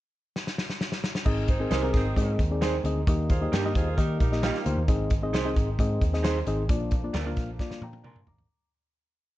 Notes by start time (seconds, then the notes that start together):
0.36 snare
0.47 snare
0.58 snare
0.70 snare
0.81 snare
0.92 snare
1.04 snare
1.15 snare
1.25 G#1 D#3 G#3 C4 D#4 G#4 D#5, kick, crash
1.48 D#4 G#4 C5, kick, closed hi-hat
1.60 C4 D#4 G#4 A#4
1.71 C2 D#4 G4 G#4 A#4 C5, snare, closed hi-hat
1.83 C4 D#4 G#4 A#4
1.94 G#1 C4 D#4 G#4, kick, snare, closed hi-hat
2.16 G#2 C4 D#4 G#4 D#5, kick, closed hi-hat
2.39 D#2, kick, closed hi-hat
2.51 C4 D#4 G#4 D5
2.61 D#4 G#4 C5, snare, closed hi-hat
2.84 D2 C4 D#4 G#4 D#5, closed hi-hat
3.07 D#2 D#3 G3 A#3 D#4 G4 D#5, kick, closed hi-hat
3.29 F4 G#4 C5, kick, closed hi-hat
3.41 A#3 D#4 G4 D#5
3.52 G2 A#3 D#4 G4 A#4, snare, closed hi-hat
3.65 A#3 D#4 G4 D#5
3.75 D#2 F4 G#4 C5, kick, closed hi-hat
3.97 D#3 A#3 D#4 G4 A#4 D#5, kick, closed hi-hat
4.19 A#1 D#4 G4 A#4, kick, closed hi-hat
4.32 A#3 D#4 G4 D#5, snare
4.42 G3 A#3 D#4 F4 G4, snare, closed hi-hat
4.55 snare
4.65 D2 A#3 D#4 G4 C5, closed hi-hat
4.77 D#2
4.88 G#1 G#3 C4 D#4 G#4 D#5, kick, closed hi-hat
5.10 kick, closed hi-hat
5.22 C4 D#4 G#4 D#5
5.33 C2 D#4 G#4 C5, snare, closed hi-hat
5.45 C4 D#4 G#4 D#5
5.56 G#1, kick, closed hi-hat
5.79 G#2 C4 D#4 G#4 D#5, kick, closed hi-hat
6.01 D#2, kick, closed hi-hat
6.13 C4 D#4 G#4 D#5, snare
6.23 D#4 G#4 C5, snare, closed hi-hat
6.47 G#1 C4 D#4 G#4 D#5, closed hi-hat
6.69 A#1 D3 F3 A#3 D4 F4 D5, kick, closed hi-hat
6.91 kick, closed hi-hat
7.04 A#3 D4 F4 D5
7.13 D2 D4 F4 A#4, snare, closed hi-hat
7.26 A#3 D4 F4 F5
7.37 A#1, kick, snare, closed hi-hat
7.59 A#3 D4 F4 D5, kick, snare
7.71 muted picked electric bass stroke, snare
7.82 A#2 G5 A#5, high tom
7.93 high tom
8.04 D4 F4 A#4 G#5 A#5 C6, mid tom
8.16 mid tom
8.27 G#1 A#5 D6, floor tom
8.38 floor tom